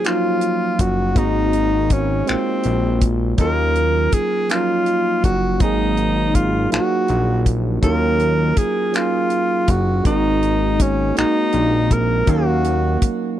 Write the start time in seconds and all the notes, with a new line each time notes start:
Already playing: F#3 A#3 C#4 D#4 F4 F#4 C5
0.04 F3 A#3 C#4 D#4 F4, finger snap, closed hi-hat
0.08 F#3 F4
0.41 closed hi-hat
0.79 F#1 F#4, kick, closed hi-hat
1.15 G#1 G#3 A#3 C4 D#4 F#4, kick, closed hi-hat
1.53 closed hi-hat
1.90 C#4, kick, closed hi-hat
2.26 A#1 G#3 A#3 C4 D#4 F4, finger snap, closed hi-hat
2.64 A#1, closed hi-hat
3.01 kick, closed hi-hat
3.37 D#2 F#3 A#3 C#4 D#4 A#4, kick, closed hi-hat
3.41 F4
3.76 closed hi-hat
4.12 F#1 G#4, kick, closed hi-hat
4.48 F3 A#3 C#4 D#4 F4, finger snap, closed hi-hat
4.55 F#3
4.86 closed hi-hat
5.24 F#1 F#4, kick, closed hi-hat
5.60 G#1 F#3 A#3 C4 D#4 G#4, kick, closed hi-hat
5.97 closed hi-hat
6.35 F4, kick, closed hi-hat
6.69 A#1 F#3 A#3 C4 D#4 F4 F#4, closed hi-hat
6.74 finger snap
6.80 F#4
7.08 A#1, closed hi-hat
7.46 kick, closed hi-hat
7.81 D#2 F#3 A#3 C#4 D#4 E4 A#4, kick, closed hi-hat
7.92 F4
8.20 closed hi-hat
8.57 F#1 G#4, kick, closed hi-hat
8.92 F#3 A#3 C#4 D#4 F4 G#4, finger snap, closed hi-hat
9.30 closed hi-hat
9.68 F#1 F#4, kick, closed hi-hat
10.03 G#1 G#3 A#3 C4 D#4, kick, closed hi-hat
10.08 F#4
10.43 closed hi-hat
10.80 C#4, kick, closed hi-hat
11.15 A#1 G#3 A#3 C4 D#4, closed hi-hat
11.19 F#4, finger snap
11.53 A#1, closed hi-hat
11.91 A#4, kick, closed hi-hat
12.26 D#2 F#3 A#3 C#4 D#4 F5, kick, closed hi-hat
12.31 F#4
12.65 closed hi-hat
13.02 G#1, kick, closed hi-hat